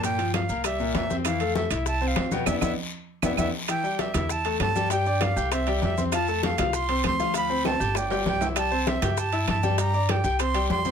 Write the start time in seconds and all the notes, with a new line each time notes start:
Already playing: G2
0.03 A#2 A#3 G5, high bongo, high conga, high timbale, long guiro, maracas
0.18 F3 F4, high bongo, high timbale, maracas
0.34 F5, high bongo, high conga, high timbale, low timbale, short guiro, claves, maracas
0.49 C2 A#3 A#4, high bongo, high conga, short guiro, maracas
0.64 G3 G4 E5, high bongo, high conga, high timbale, long guiro, claves, maracas
0.80 A#2 A#3, high conga, maracas
0.94 F2 E5, high bongo, low bongo, high conga, high timbale, low timbale, short guiro, maracas
1.10 C4 C5, high bongo, high conga, short guiro, maracas
1.25 E3 E4 F5, high bongo, high conga, high timbale, long guiro, claves, maracas
1.40 A3 A4, high conga, high timbale, maracas
1.55 E5, high bongo, high conga, low timbale, short guiro, maracas
1.70 C2 E4 E5, high conga, high timbale, short guiro, claves, maracas
1.86 A5, high bongo, high conga, long guiro, maracas
2.01 C4 C5, high conga, maracas
2.07 F5
2.16 E2, high bongo, low bongo, high conga, high timbale, low timbale, short guiro, claves, maracas
2.31 B2 B3 G5, high conga, short guiro, maracas
2.46 E2 B3 D4 E4 E5, low bongo, high conga, high timbale, long guiro, claves, maracas
2.61 E2 B3 D4 E4 E5, low bongo, high conga, high timbale, long guiro, claves, maracas
3.22 E2 B3 D4 E4 E5, low bongo, high conga, high timbale, long guiro, claves, maracas
3.37 E2 B3 D4 E4 E5, low bongo, high conga, high timbale, long guiro, claves, maracas
3.68 E3 E4 E5 G5, high bongo, high conga, high timbale, long guiro, claves, maracas
3.83 G3 G4 G5, high bongo, high conga, maracas
3.99 E5, high bongo, high conga, high timbale, short guiro, maracas
4.14 E2 E4 E5 E6, high conga, low conga, high timbale, short guiro, claves, maracas
4.29 A5, high bongo, high conga, long guiro, maracas
4.45 A3 A4 A5, high bongo, high conga, high timbale, maracas
4.60 G2 A5, high bongo, low bongo, high conga, high timbale, low timbale, short guiro, claves, maracas
4.75 G3 G4 G5, high bongo, high conga, short guiro, maracas
4.90 G3 G4 G5, high bongo, high conga, high timbale, long guiro, maracas
5.06 D4 D5 D6, high bongo, high conga, maracas
5.21 F5, high bongo, high conga, high timbale, short guiro, claves, maracas
5.36 C2 G4 G5 G6, high conga, short guiro, maracas
5.52 C4 C5 E5 C6, high bongo, high conga, high timbale, long guiro, claves, maracas
5.67 G3 G4 G5, high bongo, high conga, high timbale, maracas
5.82 F2 E5, high bongo, low bongo, high conga, low timbale, short guiro, maracas
5.97 C4 C5 C6, high bongo, high conga, short guiro, maracas
6.12 F3 F4 F5 A5, high bongo, high conga, high timbale, long guiro, claves, maracas
6.28 A3 A4 A5, high bongo, high conga, maracas
6.43 F5, high bongo, high conga, high timbale, short guiro, maracas
6.58 C2 F4 F5 F6, high conga, low conga, high timbale, short guiro, claves, maracas
6.73 C6, high bongo, high conga, long guiro, maracas
6.89 C4 C5 C6, high bongo, high conga, high timbale, maracas
7.04 D2 C6, high bongo, low bongo, high conga, high timbale, short guiro, claves, maracas
7.19 F3 F4 F5, high bongo, high conga, short guiro, maracas
7.34 F3 F4 F5 B5, high bongo, high conga, high timbale, long guiro, maracas
7.49 C4 C5 C6, high bongo, high conga, maracas
7.65 A5, high bongo, high conga, high timbale, short guiro, claves, maracas
7.80 G1 G4 G5 G6, high conga, short guiro, maracas
7.95 D4 D5 G5 D6, high bongo, high conga, low timbale, long guiro, claves, maracas
8.10 G3 G4 G5, high bongo, high conga, low timbale, maracas
8.25 C2 G5, high bongo, low bongo, high conga, low timbale, short guiro, maracas
8.41 E4 E5 E6, high bongo, high conga, low timbale, short guiro, maracas
8.56 G3 G4 G5 A5, high bongo, high conga, high timbale, long guiro, claves, maracas
8.71 C4 C5 C6, high bongo, high conga, maracas
8.87 E5, high bongo, high conga, high timbale, short guiro, maracas
9.02 G2 G4 G5 G6, high conga, low conga, high timbale, short guiro, claves, maracas
9.17 A5, high bongo, high conga, long guiro, maracas
9.32 E4 E5 E6, high bongo, high conga, high timbale, maracas
9.48 G2 A5, high bongo, low bongo, high conga, high timbale, short guiro, claves, maracas
9.63 G3 G4 G5, high bongo, high conga, short guiro, maracas
9.78 G3 G4 G5 A#5, high bongo, high conga, high timbale, long guiro, maracas
9.93 D4 D5 D6, high bongo, high conga, maracas
10.09 G5, high bongo, high conga, high timbale, short guiro, claves, maracas
10.24 C2 G4 G5 G6, high conga, short guiro, maracas
10.39 C4 C5 C6, high bongo, high conga, high timbale, long guiro, claves, maracas
10.54 G3 G4 G5, high bongo, high conga, high timbale, maracas
10.69 F2 C6, high bongo, low bongo, high conga, low timbale, short guiro, maracas
10.85 C4 C5 C6, high bongo, high conga, short guiro, maracas